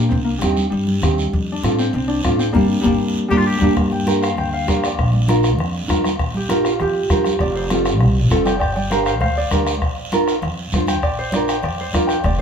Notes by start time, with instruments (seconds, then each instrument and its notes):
Already playing: harp A#3 D4
0.09 upright bass C2, harp C4, bombo low, high conga, long guiro
0.24 harp A#3
0.38 upright bass D#2, harp G3, nylon-string guitar C4, bombo rim, high conga, short guiro
0.43 nylon-string guitar D#4 G4
0.57 high conga, short guiro
0.70 upright bass G2, harp G3, high conga, long guiro
0.87 high conga
1.02 upright bass D#2, nylon-string guitar C4 D#4 G4, bombo low, bombo rim, high conga, low conga, short guiro
1.18 short guiro
1.33 upright bass F2, bombo low, high conga, long guiro
1.52 harp D4
1.63 upright bass A2, nylon-string guitar C4 F4 A4, bombo rim, high conga, short guiro
1.79 harp C4, short guiro
1.93 upright bass C2, harp C4, high conga, long guiro
2.08 harp D4
2.24 upright bass A2, nylon-string guitar C4 F4 A4, harp D4, bombo low, bombo rim, high conga, short guiro
2.39 harp C4, short guiro
2.52 upright bass G1, harp G3 A#3 D4, nylon-string guitar A#3 D4 G4, bombo low, high conga, long guiro
2.81 harp G3 A#3 D4, high conga
2.85 upright bass G1, nylon-string guitar A#3 D4 G4, bombo low, long guiro
3.28 upright bass G1, harp G3 A#3, nylon-string guitar A#3 D4 G4, clarinet G4, bombo low, high conga, long guiro
3.34 harp D4, clarinet F4
3.46 clarinet G4
3.58 upright bass G1, harp G3 A#3, nylon-string guitar A#3 D4, bombo low, high conga, long guiro
3.63 harp D4, nylon-string guitar G4
3.76 upright bass G2, bombo low, bombo rim, high conga, long guiro
3.92 harp G5, high conga
4.06 nylon-string guitar D4 G4 A#4, bombo rim, high conga, short guiro
4.22 harp F5, bombo rim, short guiro
4.37 upright bass D2, harp G5, bombo rim, low conga, long guiro
4.53 harp F5, high conga
4.67 upright bass F2, nylon-string guitar D4 G4 A#4, harp D5, bombo low, bombo rim, high conga, short guiro
4.84 harp D5, bombo rim, short guiro
4.98 upright bass A#1, bombo low, bombo rim, high conga, long guiro
5.13 high conga
5.28 nylon-string guitar D4 F4 A#4, bombo rim, high conga, short guiro
5.43 bombo rim, short guiro
5.59 upright bass F2, bombo rim, low conga, long guiro
5.74 high conga
5.88 upright bass F2, nylon-string guitar D4 F4 A#4, bombo low, bombo rim, high conga, short guiro
6.04 bombo rim, high conga, short guiro
6.19 upright bass A#1, bombo low, bombo rim, high conga, low conga, long guiro
6.34 harp G4, high conga
6.48 nylon-string guitar D4 F4 A#4, bombo rim, high conga, short guiro
6.65 harp F4, bombo rim, short guiro
6.80 upright bass F2, harp G4, bombo rim, low conga, long guiro
6.95 high conga
7.10 upright bass F2, nylon-string guitar D4 F4 A#4, harp C5, bombo low, bombo rim, high conga, low conga, short guiro
7.24 bombo rim, high conga, short guiro
7.39 upright bass F1, harp D5, bombo low, bombo rim, high conga, low conga, long guiro
7.56 harp C5
7.70 nylon-string guitar C4 F4 A4, bombo rim, high conga, short guiro
7.85 bombo rim, short guiro
8.00 upright bass C2, bombo rim, low conga, long guiro
8.15 high conga
8.30 upright bass F1, nylon-string guitar C4 F4 A4, bombo low, bombo rim, high conga, short guiro
8.45 harp D5 G5, bombo rim, high conga, short guiro
8.59 upright bass G1, harp D5 G5, bombo low, bombo rim, long guiro
8.76 harp D5 G5, high conga
8.90 nylon-string guitar D4 G4 A#4, harp C5 F5, bombo rim, high conga, short guiro
9.06 harp C5 F5, bombo rim, short guiro
9.20 upright bass D2, harp C5 F5, bombo rim, low conga, long guiro
9.36 harp D5, high conga
9.51 upright bass D2, nylon-string guitar D4 G4 A#4, bombo low, bombo rim, high conga, low conga, short guiro
9.67 bombo rim, short guiro
9.82 upright bass A#1, bombo low, bombo rim, high conga, long guiro
10.12 nylon-string guitar D4 F4 A#4, bombo rim, high conga, short guiro
10.28 bombo rim, short guiro
10.42 upright bass F2, bombo rim, low conga, long guiro
10.58 high conga
10.72 upright bass F2, nylon-string guitar D4 F4 C5, bombo low, bombo rim, high conga, low conga, short guiro
10.87 harp G5, bombo rim, high conga, short guiro
11.02 upright bass A#1, harp D5, bombo low, bombo rim, high conga, long guiro
11.19 harp C5
11.32 nylon-string guitar D4 F4 A#4, harp D5, bombo rim, high conga, short guiro
11.48 harp G5, bombo rim, short guiro
11.63 upright bass F2, harp D5, bombo rim, low conga, long guiro
11.79 harp C5, high conga
11.93 upright bass F2, nylon-string guitar D4 F4 A#4, harp D5, bombo low, bombo rim, high conga, short guiro
12.07 harp G5, bombo rim, short guiro
12.24 upright bass F1, harp D5, bombo low, bombo rim, high conga, low conga, long guiro